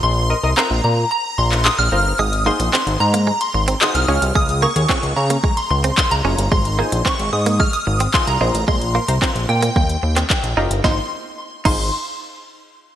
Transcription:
<<
  \new Staff \with { instrumentName = "Synth bell" } { \time 4/4 \key aes \major \tempo 4 = 111 c'''4 bes''8 bes''8 bes''8 c'''8 ees'''16 f'''8. | ees'''8 c'''4 bes''8. c'''16 c'''8 ees'''16 f'''8. | ees'''8 des'''4 bes''8. c'''16 c'''8 c'''16 bes''8. | c'''4 des'''8 ees'''8 f'''16 ees'''8. c'''16 bes''8. |
c'''4. g''2 r8 | c'''16 r4 r16 c'''8 r2 | }
  \new Staff \with { instrumentName = "Synth stab" } { \time 4/4 \key aes \major <c' f' bes' c''>16 r16 <bes' ees''>16 <bes' ees''>16 <c' f' bes' c''>4 r4. <c' f' bes' c''>8 | r8 <ees' ges' aes' c''>4 r4. <ees' ges' aes' c''>8 <des' f' aes' des''>8~ | <des' f' aes' des''>16 r16 <aes' bes'>16 <aes' des''>16 <des' f' aes' des''>4 r4. <des' f' aes' des''>8 | r8 <ees' f' aes' c''>4 r4. <ees' f' aes' c''>8 <c' f' bes' c''>8~ |
<c' f' bes' c''>16 r16 <bes' c''>16 <bes' c''>16 <c' f' bes' c''>4 r4. <ees' f' g' bes'>8 | <ees' f' aes' c''>16 r4 r16 <ees' f' aes' c''>8 r2 | }
  \new Staff \with { instrumentName = "Clean electric guitar" } { \time 4/4 \key aes \major r1 | aes16 r16 bes16 r16 c'16 r8 bes16 aes16 r8 c'16 r8 des'16 r16 | aes16 r16 bes16 r16 c'16 r8 bes16 aes16 r8 c'16 r8 des'16 r16 | aes16 r16 bes16 r16 c'16 r8 bes16 aes16 r8 c'16 r8 ees'16 r16 |
aes16 r16 bes16 r16 c'16 r8 bes16 bes16 r8 c'16 r8 ees'16 r16 | ees'8 r4 ees'8 r2 | }
  \new Staff \with { instrumentName = "Analog synth bass" } { \clef bass \time 4/4 \key aes \major bes,,8. c,16 r16 bes,,16 bes,8 r8 bes,,8. bes,,16 g,,8 | aes,,8. bes,,16 r16 aes,,16 aes,8. r16 aes,,8 r16 c,16 des,16 c,16 | des,8. ees,16 r16 des,16 des8 r8 des,8 r16 des,16 ges,,16 g,,16 | aes,,8. bes,,16 r16 aes,,16 aes,8. r16 aes,,8 r16 c,16 bes,,16 a,,16 |
bes,,8. c,16 r16 bes,,16 bes,8 ees,8 ees,8 r16 bes,,16 ges,,16 g,,16 | aes,,16 r4 r16 aes,,8 r2 | }
  \new DrumStaff \with { instrumentName = "Drums" } \drummode { \time 4/4 r4 hc4 r8. hc16 hc4 | r16 hh8 hh16 hc16 hh8 hh16 r16 hh8 hh16 hc16 hh8 hh16 | bd16 hh8 hh16 <hc bd>16 hh8 hh16 bd16 hh8 hh16 <hc bd>16 hh8 hh16 | bd16 hh8 hh16 <hc bd>16 hh8 hh16 bd16 hh8 hh16 <hc bd>16 hh8 hh16 |
bd16 hh8 hh16 <hc bd>16 hh8 hh16 bd16 hh8 <hc hh>16 <hc bd>16 hh8 hh16 | <bd sn>4 r8 <cymc bd>8 r4 r4 | }
>>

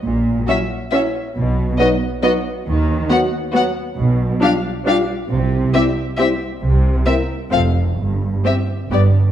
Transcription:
<<
  \new Staff \with { instrumentName = "Violin section" } { \time 3/4 \key b \major \tempo 4 = 136 r4 e''4 e''4 | r4 dis''4 dis''4 | r4 fis''4 fis''4 | \key c \major r4 f''4 f''4 |
r4 e''4 e''4 | r4 e''4 f''4 | r4 e''4 d''4 | }
  \new Staff \with { instrumentName = "Violin section" } { \time 3/4 \key b \major r4 fis'4 fis'4 | r4 fis'4 fis'4 | r4 fis'4 fis'4 | \key c \major r4 g'4 g'4 |
r4 g'4 g'4 | r4 bes'4 a'4 | r4 g'4 g'4 | }
  \new Staff \with { instrumentName = "French horn section" } { \time 3/4 \key b \major r4 <fis e'>4 <fis e'>4 | r4 <fis dis'>4 <fis dis'>4 | r4 <fis fis'>4 <fis fis'>4 | \key c \major r4 <g f'>4 <g f'>4 |
r4 <g e'>4 <g e'>4 | r4 <bes e'>4 <a f'>4 | r4 <c' e'>4 <b d'>4 | }
  \new Staff \with { instrumentName = "Viola section" } { \time 3/4 \key b \major r4 cis'4 cis'4 | r4 b4 b4 | r4 b4 b4 | \key c \major r4 d'4 d'4 |
r4 c'4 c'4 | r4 c'4 c'4 | r4 c'4 b4 | }
  \new Staff \with { instrumentName = "Cello section" } { \clef bass \time 3/4 \key b \major ais,4 r2 | b,4 r2 | dis4 r2 | \key c \major b,4 r2 |
c4 r2 | c4 r4 f,4 | g,4 r4 g,4 | }
  \new Staff \with { instrumentName = "Double bass section" } { \clef bass \time 3/4 \key b \major ais,,4 r2 | b,,4 r2 | dis,4 r2 | \key c \major b,,4 r2 |
c,4 r2 | c,4 r4 f,,4 | g,,4 r4 g,,4 | }
>>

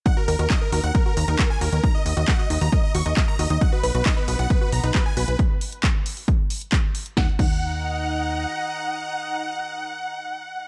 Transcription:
<<
  \new Staff \with { instrumentName = "Analog synth pad" } { \time 4/4 \key ees \minor \tempo 4 = 135 r1 | r1 | <b b' dis'' fis''>1 | r1 |
<ees' ees'' ges'' bes''>1~ | <ees' ees'' ges'' bes''>1 | }
  \new Staff \with { instrumentName = "Supersaw synth" } { \time 4/4 \key ees \minor ges''16 bes'16 bes'16 bes'16 ees''16 bes'16 bes'16 ges''16 bes'16 bes'16 bes''16 bes'16 r16 aes''16 bes'16 bes'16 | bes''16 ees''16 ees''16 ees''16 ges''16 ees''16 ees''16 bes''16 ees''16 ees''16 des'''16 ees''16 ees''16 bes''16 ees''16 ees''16 | fis''16 b'16 b'16 b'16 dis''16 b'16 b'16 fis''16 b'16 b'16 bes''16 b'16 b'16 aes''16 b'16 b'16 | r1 |
ges''16 r16 ges''2.~ ges''8~ | ges''1 | }
  \new Staff \with { instrumentName = "Synth arpeggio sound" } { \time 4/4 \key ees \minor ees'16 ges'16 bes'16 ges'16 ees'16 r16 ges'16 r16 bes'16 ges'16 r16 ees'16 ges'16 bes'16 ges'16 r16 | ees'16 r8 ges'16 bes'16 ges'16 ees'16 ges'16 bes'16 r16 ges'16 ees'16 ges'16 bes'16 ges'16 ees'16 | dis'16 fis'16 b'16 fis'16 dis'16 r16 fis'16 r16 b'16 fis'16 r16 dis'16 fis'16 b'16 fis'16 r16 | r1 |
ees'16 r16 ees'16 r2. r16 | r1 | }
  \new Staff \with { instrumentName = "Analog synth bass" } { \clef bass \time 4/4 \key ees \minor r8 ees,16 ees,16 r8 ees,16 ees,16 r8 ees,16 ees,16 r8 ees,16 ees,16 | r8 ees,16 ees,16 r8 ees,16 ees,16 r8 ees,16 ees,16 r8 ees,16 ees,16 | r8 b,,16 b,,16 r8 b,,16 b,,16 r8 b,,16 b,,16 r8 b,,16 b,,16 | r1 |
ees,16 r16 ees,2~ ees,8 r4 | r1 | }
  \new DrumStaff \with { instrumentName = "Drums" } \drummode { \time 4/4 <hh bd>8 hho16 hh16 <hc hh bd>8 hho16 hh16 <hh bd>8 hho16 hh16 <hc hh bd>8 hho16 hh16 | <hh bd>8 hho16 hh16 <hc hh bd>8 hho16 hho16 <hh bd>8 hho16 hh16 <hc hh bd>8 hho16 hh16 | <hh bd>8 hho16 hh16 <hc hh bd>8 hho16 hh16 <hh bd>8 hho16 hh16 <hc hh bd>8 hho16 hh16 | <hh bd>8 hho16 hh16 <hc hh bd>8 hho16 hho16 <hh bd>8 hho16 hh16 <hc hh bd>8 hho16 hh16 |
<bd sn>8 <cymc bd>8 r4 r4 r4 | r4 r4 r4 r4 | }
>>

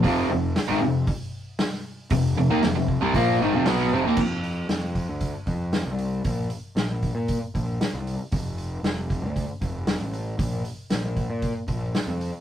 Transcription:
<<
  \new Staff \with { instrumentName = "Overdriven electric guitar" } { \clef bass \time 4/4 \key bes \major \tempo 4 = 116 <f, c f>8 <f, c>8 r16 <aes, ees>16 <f, c>8 r2 | <f, c>8 <f, c>16 <ees bes>16 <f, c>16 <f, c>8 <c g>16 <bes, f bes>8 <aes, ees>16 <f, c>16 <b, ges b>8 <f, c>16 <ees bes>16 | r1 | r1 |
r1 | r1 | }
  \new Staff \with { instrumentName = "Overdriven electric guitar" } { \clef bass \time 4/4 \key bes \major <f, c f>8 <f, c>8 r16 <aes, ees>16 <f, c>8 r2 | <f, c>8 <f, c>16 <ees bes>16 <f, c>16 <f, c>8 <c g>16 <bes, f bes>8 <aes, ees>16 <f, c>16 <b, ges b>8 <f, c>16 <ees bes>16 | r1 | r1 |
r1 | r1 | }
  \new Staff \with { instrumentName = "Picked electric bass" } { \clef bass \time 4/4 \key bes \major f,,8 f,,8 r16 aes,,16 f,,8 r2 | f,,8 f,,16 ees,16 f,,16 f,,8 c,16 bes,,8 aes,,16 f,,16 b,,8 f,,16 ees,16 | f,4 f,8. d,8 r16 f,8. c,8. | bes,,8 r8 bes,,8. bes,8 r16 bes,,8 r16 c,8 r16 |
f,,4 f,,8. d,8 r16 f,,8. a,,8. | bes,,8 r8 bes,,8. bes,8 r16 bes,,8 r16 f,8 r16 | }
  \new DrumStaff \with { instrumentName = "Drums" } \drummode { \time 4/4 <hho bd>4 <hho sn>4 <hho bd>4 <hho sn>16 sn8. | <hho bd>4 <hho sn>8 bd8 <hho bd>4 <hho sn>16 sn8. | <cymc bd>8 hho8 <hho sn>8 <hho bd>8 <hho bd>8 <hho bd>8 <hho sn>8 hho8 | <hho bd>8 hho8 <hho sn>8 <hho bd>8 <hho bd>8 <hho bd>8 <hho sn>8 hho8 |
<hho bd>8 hho8 <hho sn>8 <hho bd>8 <hho bd>8 <hho bd>8 <hho sn>8 hho8 | <hho bd>8 hho8 <hho sn>8 <hho bd>8 <hho bd>8 <hho bd>8 <hho sn>8 hho8 | }
>>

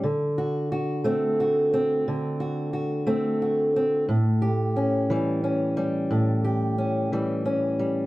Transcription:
\new Staff \with { instrumentName = "Steel-string acoustic guitar" } { \time 12/8 \key a \mixolydian \tempo 4. = 59 << { r8 fis'8 fis'8 c'8 fis'8 c'4 fis'8 fis'8 c'8 fis'8 c'8 | r8 g'8 cis'8 g8 cis'8 g4 g'8 cis'8 g8 cis'8 g8 | } \\ { d4. a4. d4. a4. | a,4. e4. a,4. e4. | } >> }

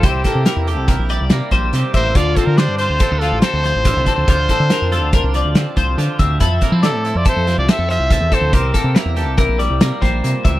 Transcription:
<<
  \new Staff \with { instrumentName = "Trumpet" } { \time 5/4 \key d \minor \tempo 4 = 141 g'4. r2. c''8 | d''8 a'16 bes'16 c''8 c''4 a'8 c''4.~ c''16 c''16~ | c''2~ c''8. r2 r16 | r4 a'8. d''16 c''8. d''16 e''8 e''4 c''8 |
bes'4 r1 | }
  \new Staff \with { instrumentName = "Clean electric guitar" } { \time 5/4 \key d \minor c''8 a'8 bes'8 a'8 bes'8 d''4 c''4 e''8 | f'4 d''8 c''8 a'8 f'8 a'8 c''8 e''8 a'8 | c''8 a'8 bes'8 a'8 bes'8 d''4 c''4 e''8 | e'4 d''8 c''8 a'8 f'8 a'8 c''8 e''8 a'8 |
c''8 a'8 bes'8 a'8 bes'8 d''4 c''4 e''8 | }
  \new Staff \with { instrumentName = "Clean electric guitar" } { \time 5/4 \key d \minor << { e'8 bes8 e'8 g'8 e'4 bes4 g'8 bes8 | f'8 c'8 d'8 f'8 c'16 d'8. c'4 f'8 c'8 | f'8 c'8 d'8 f'8 d'4 c'4 f'8 c'8 | a'8 bes16 c'16 e'8 e'8 e'4 c'4 a'8 c'8 |
g'8 bes8 e'8 g'8 e'4 bes2 | } \\ { c2~ c8 g4 g8 c4 | d2~ d8 f4 f8 d4 | d2~ d8 f4 f8 d4 | f,2~ f,8 f4 f8 f,4 |
c2~ c8 g4 g8 bes,8 c8 | } >> }
  \new Staff \with { instrumentName = "Fingered electric bass" } { \clef bass \time 5/4 \key d \minor c,8 r16 c16 r16 e,8 c,8 bes,,8 c,16 c16 r16 bes,,8 c16 r16 a,,8 | d,8 r16 d8 g,8 d,16 r16 d,8 a,,16 r16 d,8 a,,8 c,16 r16 d,16 | d,8 r16 d16 r16 f,8 d,8 c,8 d,16 d16 r16 c,8 d16 r16 d,8 | f,8 r16 f8 a,8 f,16 r16 f,8 c,16 r16 f,8 c,8 e,16 r16 d,16 |
c,8 r16 c16 r16 e,8 c,8 bes,,8 c,16 c16 r16 bes,,8 c16 r16 des,8 | }
  \new DrumStaff \with { instrumentName = "Drums" } \drummode { \time 5/4 <hh bd>8 <hh bd sn>8 <hh sn>8 hh8 <hh bd sn>8 hh8 <hh sn>8 <hh bd>8 <hh sn>8 <hh bd>8 | <hh bd>8 <hh bd>8 <hh sn>8 hh8 <hh bd>8 hh8 <hh sn>8 <hh sn>8 <hh bd>8 <hh bd>8 | <hh bd>8 <hh bd>8 <hh sn>8 <hh sn>8 <hh bd sn>8 hh8 <hh sn>8 <hh bd>8 <hh sn>8 <hh bd>8 | <hh bd>8 <hh bd>8 <hh sn>8 hh8 <hh bd>8 <hh sn>8 <hh sn>8 <hh sn>8 <hh bd sn>8 <hh bd>8 |
<hh bd>8 <hh bd>8 <hh sn>8 <hh sn>8 <hh bd sn>8 hh8 <hh sn>8 <hh bd sn>8 hh8 <hh bd>8 | }
>>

